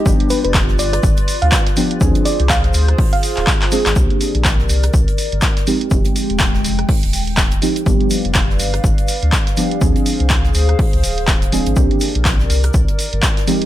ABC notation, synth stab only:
X:1
M:4/4
L:1/8
Q:"Swing 16ths" 1/4=123
K:Cm
V:1 name="Synth stab"
[F,G,=B,DG]6- [F,G,B,DG] [F,G,B,DG] | [F,A,CDA]6- [F,A,CDA] [F,A,CDA] | [E,B,CD]6- [E,B,CD] [F,A,CEG] | [F,A,CEG]6- [F,A,CEG] [F,A,CEG] |
[F,G,=B,DG]6- [F,G,B,DG] [F,G,B,DG] | [F,A,CDA]6- [F,A,CDA] [F,A,CDA] | [E,B,CDG]6- [E,B,CDG] [F,A,CEG] |]